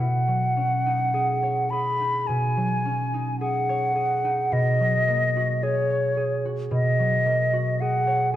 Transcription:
0.00 2.28 B2 soft
0.00 0.56 C#4 soft
0.00 1.72 F#5 medium
0.28 2.56 F#3 soft
0.57 2.84 C#4 soft
0.86 1.99 D#4 soft
1.14 1.71 G#4 soft
1.43 3.68 C#5 soft
1.70 3.40 G#4 soft
1.70 2.29 B5 medium
2.00 3.12 D#4 soft
2.27 4.51 B2 soft
2.27 3.40 G#5 medium
2.57 4.79 F#3 soft
2.85 6.75 C#4 soft
3.14 4.23 D#4 soft
3.40 3.94 G#4 soft
3.40 4.54 F#5 medium
3.69 5.89 C#5 soft
3.95 5.62 G#4 soft
4.24 8.14 D#4 soft
4.52 6.70 B2 soft
4.52 5.65 D#5 medium
4.80 6.98 F#3 soft
5.08 7.24 A#3 soft
5.37 6.44 F#4 soft
5.63 6.16 G#4 soft
5.63 6.46 C#5 medium
5.90 8.06 C#5 soft
6.17 7.80 G#4 soft
6.45 7.52 F#4 soft
6.71 8.36 B2 soft
6.71 7.82 D#5 medium
6.99 8.36 F#3 soft
7.25 8.36 A#3 soft
7.53 8.36 F#4 soft
7.80 8.33 G#4 soft
7.80 8.33 F#5 medium
8.07 8.36 C#5 soft

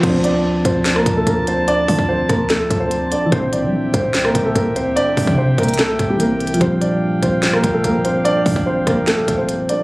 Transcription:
0.00 0.63 D2 loud
0.00 3.25 F3 medium
0.00 3.28 C4 medium
0.00 6.57 C4 medium
0.00 3.29 F4 medium
0.00 0.23 C5 medium
0.00 3.29 D5 medium
0.00 3.29 A5 medium
0.00 kick loud
0.00 closed hi-hat medium
0.00 crash loud
0.04 0.23 C4 medium
0.09 3.31 D4 medium
0.24 0.63 D4 medium
0.24 0.63 D5 medium
0.24 closed hi-hat medium
0.65 1.04 D2 loud
0.65 0.95 C4 medium
0.65 0.94 C5 medium
0.65 kick loud
0.65 closed hi-hat medium
0.86 snare loud
0.86 closed hi-hat medium
0.96 1.16 A#3 medium
0.96 1.15 A#4 medium
0.96 cross-stick loud
1.06 1.26 D2 loud
1.06 kick loud
1.06 closed hi-hat medium
1.17 1.27 A3 medium
1.17 1.26 A4 medium
1.27 1.86 D2 loud
1.27 1.46 A#3 medium
1.27 1.46 A#4 medium
1.27 kick loud
1.27 closed hi-hat medium
1.47 1.67 C4 medium
1.47 1.67 C5 medium
1.47 closed hi-hat medium
1.68 2.07 D4 medium
1.68 2.06 D5 loud
1.68 closed hi-hat medium
1.88 1.98 D3 loud
1.88 kick loud
1.88 open hi-hat medium
1.99 2.21 D2 loud
1.99 kick loud
2.09 2.29 C4 medium
2.09 2.28 C5 medium
2.19 2.29 E2 loud
2.29 2.69 D2 loud
2.29 2.49 A#3 medium
2.29 2.49 A#4 medium
2.29 kick loud
2.29 cross-stick medium
2.29 closed hi-hat medium
2.50 2.79 A3 medium
2.50 2.79 A4 medium
2.50 snare loud
2.50 closed hi-hat medium
2.71 3.10 D2 loud
2.71 kick loud
2.71 closed hi-hat medium
2.80 3.10 C4 medium
2.80 3.09 C5 medium
2.91 closed hi-hat medium
3.12 3.32 D4 medium
3.12 3.31 D5 medium
3.12 closed hi-hat medium
3.26 6.13 E3 medium
3.32 3.64 C2 loud
3.32 6.16 A#2 medium
3.32 3.52 C4 medium
3.32 9.83 G4 medium
3.32 3.51 C5 loud
3.32 6.58 E5 medium
3.32 9.83 G5 medium
3.32 kick loud
3.32 closed hi-hat medium
3.38 6.19 C4 medium
3.53 3.92 D4 medium
3.53 3.91 D5 medium
3.53 closed hi-hat medium
3.63 3.73 G3 loud
3.94 4.33 C2 loud
3.94 4.23 C4 medium
3.94 4.23 C5 medium
3.94 kick loud
3.94 closed hi-hat medium
4.14 snare loud
4.14 closed hi-hat medium
4.25 4.44 A#3 medium
4.25 4.44 A#4 medium
4.25 cross-stick loud
4.35 4.55 C2 loud
4.35 kick loud
4.35 closed hi-hat loud
4.45 4.55 A3 medium
4.45 4.55 A4 medium
4.55 4.78 C2 loud
4.55 4.75 A#3 medium
4.55 4.75 A#4 medium
4.55 kick medium
4.55 closed hi-hat medium
4.76 4.96 D2 loud
4.76 4.96 C4 medium
4.76 4.95 C5 medium
4.76 closed hi-hat medium
4.96 5.35 D4 medium
4.96 5.35 D5 loud
4.96 closed hi-hat medium
5.17 5.27 C2 loud
5.17 kick loud
5.17 open hi-hat medium
5.27 5.57 C3 loud
5.27 kick loud
5.38 5.57 C4 medium
5.38 5.57 C5 medium
5.58 5.98 C2 loud
5.58 5.78 A#3 medium
5.58 5.77 A#4 medium
5.58 kick loud
5.58 closed hi-hat medium
5.63 closed hi-hat medium
5.68 closed hi-hat medium
5.74 closed hi-hat medium
5.79 6.08 A3 medium
5.79 6.08 A4 medium
5.79 snare loud
5.79 closed hi-hat medium
5.99 6.58 C2 loud
5.99 kick loud
5.99 closed hi-hat medium
6.09 6.19 G3 medium
6.09 6.19 G4 medium
6.17 6.59 E3 soft
6.17 6.61 A#3 soft
6.17 6.39 A#4 medium
6.17 closed hi-hat medium
6.21 6.40 A#3 medium
6.21 6.62 C4 soft
6.40 closed hi-hat soft
6.47 closed hi-hat medium
6.54 9.82 F3 medium
6.54 closed hi-hat medium
6.60 7.20 G1 loud
6.60 9.83 G3 medium
6.60 6.81 C4 medium
6.60 9.83 D4 medium
6.60 6.80 C5 medium
6.60 9.83 F5 medium
6.60 kick loud
6.60 closed hi-hat medium
6.66 9.83 A#2 medium
6.81 7.20 D4 medium
6.81 7.20 D5 medium
6.81 closed hi-hat medium
7.23 7.62 G1 loud
7.23 7.52 C4 medium
7.23 7.52 C5 medium
7.23 kick loud
7.23 closed hi-hat medium
7.43 snare loud
7.43 closed hi-hat medium
7.53 7.73 A#3 medium
7.53 7.73 A#4 medium
7.53 cross-stick loud
7.64 7.83 G1 loud
7.64 kick loud
7.64 closed hi-hat loud
7.74 7.84 A3 medium
7.74 7.83 A4 medium
7.84 8.43 G1 loud
7.84 8.04 A#3 medium
7.84 8.03 A#4 medium
7.84 kick medium
7.84 closed hi-hat medium
8.05 8.24 C4 medium
8.05 8.24 C5 medium
8.05 closed hi-hat medium
8.25 8.64 D4 medium
8.25 8.64 D5 loud
8.25 closed hi-hat medium
8.46 8.55 G2 loud
8.46 kick medium
8.46 open hi-hat medium
8.56 8.78 G1 loud
8.56 kick loud
8.66 8.86 C4 medium
8.66 8.86 C5 medium
8.77 8.86 A1 loud
8.87 9.26 G1 loud
8.87 9.06 A#3 medium
8.87 9.06 A#4 medium
8.87 kick loud
8.87 cross-stick medium
8.87 closed hi-hat medium
9.07 9.37 A3 medium
9.07 9.37 A4 medium
9.07 snare loud
9.07 closed hi-hat medium
9.28 9.68 G1 loud
9.28 kick loud
9.28 closed hi-hat medium
9.38 9.68 C4 medium
9.38 9.67 C5 medium
9.49 closed hi-hat medium
9.69 9.83 D4 medium
9.69 9.83 D5 medium
9.69 closed hi-hat medium

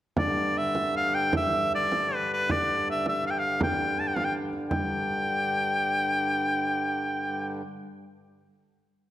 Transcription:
0.17 4.71 G2 medium
0.17 4.71 D3 medium
0.17 0.59 D5 medium
0.17 frame drum medium
0.35 frame drum soft
0.58 0.96 E5 medium
0.75 frame drum medium
0.94 1.16 F5 medium
0.94 frame drum soft
1.15 1.34 G5 medium
1.33 1.71 E5 medium
1.33 frame drum medium
1.54 frame drum soft
1.75 2.16 D5 medium
1.92 frame drum medium
2.11 2.32 B4 medium
2.11 frame drum soft
2.33 2.53 B4 medium
2.50 2.88 D5 medium
2.50 frame drum medium
2.68 frame drum soft
2.91 3.06 E5 medium
3.06 3.25 E5 medium
3.06 frame drum medium
3.24 3.32 F5 medium
3.24 frame drum soft
3.31 3.41 G5 medium
3.39 3.62 F5 medium
3.61 4.01 G5 medium
3.61 frame drum medium
3.79 frame drum soft
3.98 4.09 A5 medium
3.98 frame drum soft
4.07 4.18 G5 medium
4.17 4.26 F5 medium
4.17 frame drum medium
4.25 4.34 G5 medium
4.53 frame drum soft
4.69 7.62 G2 medium
4.69 7.62 D3 medium
4.69 7.57 G5 medium
4.69 frame drum medium

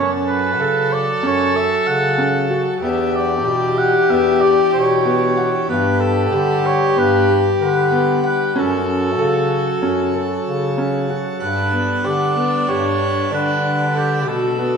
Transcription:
0.00 0.60 F#2 medium
0.00 2.80 F#3 soft
0.00 0.49 C#4 medium
0.00 2.78 A4 loud
0.00 2.79 A4 medium
0.00 0.11 C#5 medium
0.28 0.94 B4 medium
0.58 1.12 C#3 medium
0.58 1.13 A4 medium
0.93 1.29 D5 medium
1.22 1.76 F#2 medium
1.22 1.50 C#4 medium
1.27 1.58 C#5 medium
1.54 2.08 A4 medium
1.54 1.89 E5 medium
1.87 2.67 C#3 medium
1.87 2.55 F#5 medium
2.18 2.45 C#4 medium
2.50 2.77 F#4 medium
2.81 3.47 E2 medium
2.81 3.36 B3 medium
2.81 8.53 D4 medium
2.81 5.64 G4 loud
2.81 5.67 G4 medium
2.81 3.17 E5 medium
2.85 5.68 E3 medium
3.16 3.80 D5 medium
3.45 3.99 B2 medium
3.45 3.99 G4 medium
3.78 4.12 F#5 medium
4.09 4.63 E2 medium
4.09 4.36 B3 medium
4.09 4.43 E5 medium
4.41 4.95 G4 medium
4.41 4.73 D5 medium
4.73 5.54 B2 medium
4.73 5.65 C#5 medium
5.05 5.32 B3 medium
5.37 5.64 F#5 medium
5.68 6.35 G2 medium
5.68 8.52 G3 medium
5.68 6.22 B3 medium
5.68 8.55 G4 loud
5.68 6.02 B4 medium
5.68 8.53 B4 medium
6.00 6.68 A4 medium
6.32 6.87 D3 medium
6.32 6.86 G4 medium
6.66 7.00 C#5 medium
6.96 7.51 G2 medium
6.96 7.23 B3 medium
6.96 7.34 B4 medium
7.28 7.81 G4 medium
7.59 8.40 D3 medium
7.59 8.20 B4 medium
7.91 8.18 B3 medium
8.24 8.60 B4 medium
8.24 8.50 F#5 medium
8.53 9.21 F#2 medium
8.53 9.09 C#4 medium
8.53 11.09 F#4 medium
8.58 11.40 F#3 soft
8.58 11.40 C#4 medium
8.58 11.38 A4 medium
8.58 10.79 A4 medium
9.19 9.73 C#3 medium
9.19 9.72 A4 medium
9.82 10.36 F#2 medium
9.82 10.09 C#4 medium
10.14 10.67 A4 medium
10.46 11.27 C#3 medium
10.78 11.04 C#4 medium
11.09 11.36 F#4 medium
11.39 11.95 G2 medium
11.39 14.23 G3 medium
11.39 14.26 D4 medium
11.39 14.24 A4 soft
11.39 14.24 B4 medium
11.39 12.06 B4 medium
11.39 14.24 F#5 soft
11.73 11.99 B3 medium
12.04 12.59 D3 medium
12.04 12.31 G4 medium
12.04 12.70 D5 medium
12.36 12.63 B3 medium
12.68 13.23 G2 medium
12.68 13.22 G4 medium
12.68 13.32 C#5 medium
13.31 14.28 D3 medium
13.31 13.85 D4 medium
13.31 13.92 B4 medium
13.95 14.30 G4 medium
13.95 14.22 A4 medium
14.24 14.77 B2 medium
14.24 14.77 A3 soft
14.24 14.77 B3 soft
14.24 14.77 D4 medium
14.24 14.77 F#4 medium
14.24 14.77 A4 medium
14.58 14.77 B3 medium

